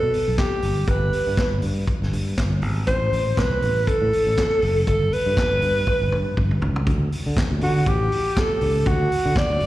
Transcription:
0.00 0.12 B2 medium
0.00 0.35 A4 medium
0.13 open hi-hat medium
0.28 0.37 B1 medium
0.38 0.90 G4 medium
0.38 kick loud
0.38 snare loud
0.38 clap medium
0.38 closed hi-hat medium
0.62 0.84 G1 medium
0.62 open hi-hat medium
0.87 1.09 G1 loud
0.87 1.63 B4 medium
0.87 kick loud
0.87 closed hi-hat medium
1.13 open hi-hat medium
1.27 1.36 G2 medium
1.37 kick loud
1.37 snare loud
1.37 clap medium
1.37 closed hi-hat medium
1.52 1.61 G1 medium
1.62 1.84 G2 medium
1.62 open hi-hat medium
1.88 kick loud
1.88 closed hi-hat medium
2.02 2.11 G1 medium
2.02 snare soft
2.13 2.34 G2 medium
2.13 open hi-hat medium
2.37 2.62 G1 loud
2.37 kick loud
2.37 snare loud
2.37 clap medium
2.37 closed hi-hat medium
2.62 2.83 G#1 medium
2.62 open hi-hat medium
2.87 3.09 A1 loud
2.87 3.40 C5 loud
2.87 kick loud
2.87 closed hi-hat medium
3.13 3.34 A1 medium
3.13 open hi-hat medium
3.37 3.59 C2 medium
3.37 3.89 B4 loud
3.37 kick loud
3.37 snare loud
3.37 clap medium
3.37 closed hi-hat medium
3.62 3.83 A1 medium
3.62 open hi-hat medium
3.87 4.88 A4 loud
3.87 muted fingered electric bass stroke soft
3.87 kick loud
3.87 closed hi-hat medium
4.02 4.11 A2 loud
4.13 open hi-hat medium
4.27 4.36 A1 medium
4.38 kick loud
4.38 snare loud
4.38 clap medium
4.38 closed hi-hat medium
4.62 4.84 F#1 medium
4.62 open hi-hat medium
4.87 5.09 G1 loud
4.87 5.15 A4 medium
4.87 kick loud
4.87 closed hi-hat medium
5.13 6.62 B4 loud
5.13 open hi-hat medium
5.26 5.36 G2 loud
5.37 kick loud
5.37 snare loud
5.37 clap medium
5.37 closed hi-hat medium
5.51 5.61 G1 medium
5.62 5.83 G2 medium
5.62 open hi-hat medium
5.87 kick loud
5.87 high tom medium
6.02 6.11 G1 loud
6.12 6.34 G2 medium
6.12 mid tom medium
6.37 6.58 G1 medium
6.37 kick loud
6.37 mid tom medium
6.51 mid tom medium
6.62 6.83 C#2 medium
6.62 floor tom loud
6.76 floor tom loud
6.87 7.08 D2 loud
6.87 kick loud
6.87 closed hi-hat medium
7.12 open hi-hat medium
7.26 7.35 D3 medium
7.37 kick loud
7.37 snare loud
7.37 clap loud
7.37 closed hi-hat medium
7.51 7.60 D2 medium
7.61 7.83 D3 loud
7.61 7.89 F#4 medium
7.61 open hi-hat medium
7.86 8.08 A1 loud
7.86 8.40 G4 loud
7.86 kick loud
7.86 closed hi-hat medium
8.12 open hi-hat medium
8.37 8.88 A4 medium
8.37 kick loud
8.37 snare loud
8.37 clap medium
8.37 closed hi-hat medium
8.61 8.82 C#2 medium
8.61 open hi-hat medium
8.86 9.07 D2 loud
8.86 9.39 F#4 loud
8.86 kick loud
8.86 closed hi-hat medium
9.12 open hi-hat medium
9.26 9.35 D3 loud
9.36 9.66 D5 loud
9.36 kick loud
9.36 snare loud
9.36 clap medium
9.36 closed hi-hat medium
9.50 9.59 D2 medium
9.60 9.66 G1 medium
9.60 open hi-hat medium

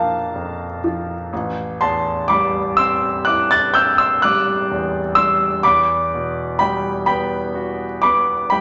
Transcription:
0.00 1.28 A#1 medium
0.00 0.64 F3 soft
0.00 1.34 A#3 soft
0.00 1.34 D4 soft
0.00 1.34 F5 medium
0.00 0.83 A5 medium
0.00 1.34 A#5 medium
0.00 1.34 D6 medium
0.36 1.13 F2 soft
0.84 1.32 F3 soft
1.33 5.60 A1 medium
1.81 2.58 E2 soft
1.81 2.25 A5 medium
1.81 2.28 C6 medium
2.28 3.06 G3 soft
2.28 2.73 B5 medium
2.28 2.76 D6 medium
2.77 3.56 C4 soft
2.77 3.23 C6 medium
2.77 3.25 E6 medium
3.25 4.04 E4 soft
3.25 3.48 D6 medium
3.25 3.49 F#6 medium
3.51 3.73 F#6 medium
3.51 3.75 A6 medium
3.74 4.51 C4 soft
3.74 3.97 E6 medium
3.74 3.98 G6 loud
3.98 4.21 C6 medium
3.98 4.22 E6 medium
4.22 4.98 G3 soft
4.22 5.13 D6 medium
4.22 5.16 F#6 loud
4.71 5.46 E2 soft
5.15 5.64 G3 soft
5.15 5.61 C6 medium
5.15 5.64 E6 medium
5.63 8.61 E2 medium
5.63 6.56 B5 medium
5.63 6.60 D6 loud
6.14 6.90 B2 soft
6.59 7.36 G3 soft
6.59 7.04 G5 medium
6.59 7.05 B5 medium
7.06 7.84 B3 soft
7.06 7.99 G5 medium
7.06 8.01 B5 medium
7.55 8.33 F#4 soft
8.02 8.61 B3 soft
8.02 8.48 B5 medium
8.02 8.51 D6 medium
8.50 8.61 G3 soft
8.50 8.61 G5 medium
8.50 8.61 B5 medium

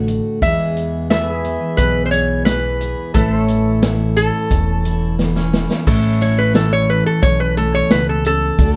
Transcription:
0.00 0.20 A1 medium
0.00 0.42 A2 medium
0.00 0.42 D3 medium
0.00 0.38 A3 medium
0.00 0.40 D4 medium
0.00 0.40 A4 medium
0.00 0.41 F#5 medium
0.08 0.38 F#4 medium
0.08 closed hi-hat medium
0.42 1.56 E2 medium
0.42 3.14 E2 medium
0.42 1.10 E3 medium
0.42 3.11 G#3 medium
0.42 1.44 B3 medium
0.42 1.10 G#4 medium
0.42 1.09 E5 loud
0.42 kick medium
0.42 closed hi-hat medium
0.77 closed hi-hat medium
1.10 2.47 E3 medium
1.10 2.12 G#4 medium
1.10 1.32 A4 medium
1.10 3.14 B4 medium
1.10 1.80 E5 medium
1.10 snare loud
1.10 closed hi-hat medium
1.14 3.15 E5 medium
1.32 3.13 G#4 medium
1.45 2.46 B3 soft
1.45 closed hi-hat soft
1.77 2.92 B1 medium
1.77 2.47 B2 medium
1.77 2.03 B4 medium
1.77 kick medium
1.77 closed hi-hat medium
2.05 2.11 C5 medium
2.11 2.81 G#4 medium
2.11 2.45 C#5 medium
2.11 closed hi-hat medium
2.45 3.16 E3 medium
2.45 3.15 B3 soft
2.45 3.14 B4 medium
2.45 snare loud
2.45 closed hi-hat medium
2.81 3.11 G#4 medium
2.81 closed hi-hat medium
3.14 4.28 A1 medium
3.14 4.51 A2 medium
3.14 3.82 E3 medium
3.14 5.84 A3 medium
3.14 4.16 C#4 medium
3.14 3.82 E4 medium
3.14 3.78 A4 medium
3.14 5.84 A4 medium
3.14 3.40 B4 medium
3.14 5.85 E5 medium
3.14 kick medium
3.14 closed hi-hat medium
3.40 5.85 C#5 medium
3.48 closed hi-hat medium
3.83 5.18 E3 medium
3.83 4.84 E4 medium
3.83 snare loud
3.83 closed hi-hat medium
4.17 5.19 C#4 soft
4.17 5.15 A4 loud
4.17 closed hi-hat medium
4.51 5.65 E1 medium
4.51 5.87 E2 medium
4.51 kick medium
4.51 closed hi-hat medium
4.85 5.52 E4 medium
4.85 closed hi-hat medium
5.19 5.83 E3 medium
5.19 5.36 B3 medium
5.19 snare medium
5.36 5.86 C#4 soft
5.36 snare medium
5.53 6.20 E4 medium
5.53 snare medium
5.71 snare medium
5.87 7.01 A1 medium
5.87 7.23 A2 medium
5.87 7.22 C#4 medium
5.87 8.57 A4 medium
5.87 8.57 C#5 medium
5.87 8.58 E5 medium
5.87 kick loud
5.87 crash medium
6.21 8.59 E4 medium
6.21 6.38 C#5 medium
6.21 closed hi-hat medium
6.38 6.55 B4 medium
6.54 8.55 E3 medium
6.54 6.72 A4 medium
6.54 snare loud
6.54 closed hi-hat medium
6.73 6.89 C#5 medium
6.89 7.57 A3 soft
6.89 7.06 B4 medium
7.06 7.23 A4 medium
7.22 7.81 B1 medium
7.22 8.59 E2 medium
7.22 8.55 C#4 medium
7.22 7.39 C#5 medium
7.22 kick loud
7.22 closed hi-hat medium
7.40 7.57 B4 medium
7.57 8.56 A3 medium
7.57 7.74 A4 medium
7.74 7.91 C#5 medium
7.91 8.49 C#2 medium
7.91 8.25 B2 medium
7.91 8.08 B4 medium
7.91 snare loud
7.91 closed hi-hat medium
8.09 8.25 A4 medium
8.25 8.60 C#3 medium
8.25 8.76 A4 loud
8.25 closed hi-hat medium
8.59 8.76 D2 medium
8.59 8.76 A3 medium
8.59 8.76 D4 medium
8.59 8.76 F#4 medium
8.59 kick loud
8.59 closed hi-hat medium

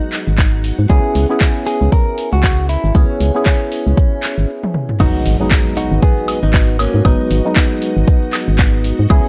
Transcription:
0.00 0.87 F#3 medium
0.00 0.87 G#3 medium
0.00 0.87 B3 medium
0.00 0.81 D#4 medium
0.00 0.87 D#4 medium
0.00 4.49 F#4 medium
0.00 4.49 F#5 medium
0.13 clap medium
0.13 open hi-hat loud
0.13 shaker medium
0.27 0.72 G#1 medium
0.27 shaker soft
0.38 kick medium
0.38 clap loud
0.38 shaker soft
0.64 open hi-hat medium
0.64 shaker medium
0.79 0.86 G#2 medium
0.79 shaker soft
0.89 1.00 C#2 medium
0.89 1.26 B3 medium
0.89 1.27 C#4 medium
0.89 1.27 E4 medium
0.89 1.25 G#4 loud
0.89 1.27 G#4 loud
0.89 kick loud
0.89 shaker soft
1.15 1.26 C#2 loud
1.15 open hi-hat loud
1.15 shaker medium
1.29 2.92 B3 medium
1.29 2.92 C#4 medium
1.29 2.92 E4 medium
1.29 2.93 G#4 loud
1.29 shaker soft
1.41 kick loud
1.41 clap loud
1.41 shaker soft
1.66 1.90 G#4 medium
1.66 open hi-hat medium
1.66 shaker medium
1.81 1.89 C#2 loud
1.81 shaker soft
1.92 2.28 A#4 medium
1.92 kick loud
1.92 shaker soft
2.18 open hi-hat loud
2.18 shaker medium
2.33 2.77 C#2 medium
2.33 2.66 F#4 medium
2.33 shaker soft
2.44 kick medium
2.44 clap loud
2.44 shaker soft
2.69 2.93 E4 medium
2.69 open hi-hat medium
2.69 shaker medium
2.84 2.92 G#1 medium
2.84 shaker soft
2.94 3.05 C#2 loud
2.94 3.32 B3 medium
2.94 3.32 C#4 medium
2.94 3.42 C#4 medium
2.94 3.32 E4 medium
2.94 3.32 G#4 medium
2.94 kick loud
2.94 shaker soft
3.20 3.31 C#2 medium
3.20 open hi-hat loud
3.20 shaker medium
3.34 4.97 B3 medium
3.34 4.97 C#4 medium
3.34 4.98 E4 medium
3.34 4.98 G#4 loud
3.34 shaker soft
3.46 4.49 C#4 medium
3.46 kick loud
3.46 clap loud
3.46 shaker soft
3.72 open hi-hat medium
3.72 shaker medium
3.87 3.94 C#2 loud
3.87 shaker soft
3.97 kick loud
3.97 shaker soft
4.23 clap medium
4.23 open hi-hat loud
4.23 shaker medium
4.38 4.46 G#1 medium
4.38 shaker soft
4.64 high tom medium
4.74 mid tom medium
4.89 mid tom medium
5.00 5.10 G#1 loud
5.00 5.37 F#3 medium
5.00 5.37 G#3 medium
5.00 9.06 G#3 medium
5.00 5.37 B3 medium
5.00 5.36 D#4 medium
5.00 5.37 D#4 loud
5.00 9.29 F#4 medium
5.00 9.06 F#4 medium
5.00 5.36 F#4 medium
5.00 9.06 B4 medium
5.00 9.29 D#5 medium
5.00 kick loud
5.00 crash loud
5.00 impact medium
5.00 high woodblock medium
5.00 shaker soft
5.15 shaker soft
5.26 5.36 G#1 loud
5.26 open hi-hat loud
5.26 shaker medium
5.40 7.02 F#3 medium
5.40 7.02 G#3 medium
5.40 7.03 B3 medium
5.40 7.03 D#4 loud
5.40 shaker soft
5.51 kick loud
5.51 clap loud
5.51 shaker soft
5.67 shaker soft
5.77 6.00 D#4 medium
5.77 6.00 F#4 medium
5.77 open hi-hat medium
5.77 shaker medium
5.92 5.99 G#1 loud
5.92 shaker soft
6.02 6.38 B3 medium
6.02 6.38 G#4 medium
6.02 kick loud
6.02 shaker soft
6.18 shaker soft
6.28 open hi-hat loud
6.28 high woodblock medium
6.28 shaker medium
6.43 6.87 G#1 medium
6.43 6.76 B3 medium
6.43 6.76 D#4 medium
6.43 shaker soft
6.54 kick loud
6.54 clap loud
6.54 shaker soft
6.69 shaker soft
6.79 7.03 A#3 medium
6.79 7.03 C#4 medium
6.79 open hi-hat medium
6.79 high woodblock medium
6.79 shaker medium
6.94 7.02 G#2 medium
6.94 shaker soft
7.05 7.16 G#1 loud
7.05 7.42 F#3 medium
7.05 7.42 G#3 medium
7.05 7.52 B3 medium
7.05 7.42 B3 medium
7.05 7.42 D#4 medium
7.05 7.52 D#4 medium
7.05 kick loud
7.05 high woodblock medium
7.05 shaker soft
7.20 shaker soft
7.31 7.41 G#1 loud
7.31 open hi-hat loud
7.31 shaker medium
7.45 9.07 F#3 medium
7.45 9.07 G#3 medium
7.45 9.08 B3 medium
7.45 9.08 D#4 medium
7.45 shaker soft
7.56 9.02 B3 medium
7.56 9.02 D#4 medium
7.56 kick loud
7.56 clap loud
7.56 shaker soft
7.72 shaker soft
7.82 open hi-hat loud
7.82 shaker medium
7.97 8.04 G#1 loud
7.97 shaker soft
8.08 kick loud
8.08 shaker soft
8.23 shaker soft
8.33 clap medium
8.33 open hi-hat loud
8.33 high woodblock medium
8.33 shaker medium
8.48 8.92 G#1 medium
8.48 shaker soft
8.59 kick loud
8.59 clap loud
8.59 shaker soft
8.74 shaker soft
8.84 open hi-hat medium
8.84 shaker medium
8.99 9.07 G#2 medium
8.99 shaker soft
9.10 9.21 C#2 loud
9.10 9.29 E3 medium
9.10 9.29 B3 medium
9.10 9.29 C#4 medium
9.10 9.29 E4 medium
9.10 9.29 G#4 medium
9.10 9.29 G#4 loud
9.10 9.29 C#5 medium
9.10 kick loud
9.10 high woodblock medium
9.10 shaker soft
9.26 shaker soft

